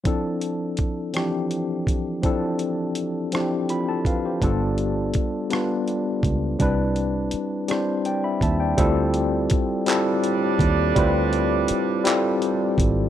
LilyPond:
<<
  \new Staff \with { instrumentName = "Tine electric piano" } { \time 6/8 \key d \dorian \tempo 4. = 55 << { r2. | r2 <c' f' b''>16 <e' a' a''>16 <f' b' f''>16 <g' c''>16~ | <g' c''>16 r2 r8. | r2 <d'' g''>16 <e'' b''>16 <e'' a''>16 <d'' g''>16~ |
<d'' g''>16 r2 r8. | r2. | } \\ { <f c' d' e' a'>4. <e f c' d' e' g'>4. | <f c' d' e' a'>4. <f c' d' e' g'>4. | <g b d' f' a'>4. <g b d' f' b'>4. | <g c' d' e' b'>4. <g c' d' e' c''>4. |
<g c' e' f' a'>4. <g c' e' f' a'>4. | <g c' e' f' b'>4. <g c' e' f' a'>4. | } >> }
  \new Staff \with { instrumentName = "Horn section" } { \clef bass \time 6/8 \key d \dorian r2. | r2. | r2. | r2. |
r4. <a, g d'>4.~ | <a, g d'>2~ <a, g d'>8 r8 | }
  \new Staff \with { instrumentName = "Fingered electric bass" } { \clef bass \time 6/8 \key d \dorian r2. | r2. | g,,4 r4. cis,8 | c,4 r4. ees,8 |
d,4 r4. ees,8 | d,4 r4. gis,,8 | }
  \new DrumStaff \with { instrumentName = "Drums" } \drummode { \time 6/8 <hh bd>8 hh8 <hh bd>8 <hh ss>8 hh8 <hh bd>8 | <hh bd>8 hh8 hh8 <hh ss>8 hh8 <hh bd>8 | <hh bd>8 hh8 <hh bd>8 <hh ss>8 hh8 <hh bd>8 | <hh bd>8 hh8 hh8 <hh ss>8 hh8 <hh bd>8 |
<hh bd>8 hh8 <hh bd>8 <hc hh>8 hh8 <hh bd>8 | <hh bd>8 hh8 hh8 <hc hh>8 hh8 <hh bd>8 | }
>>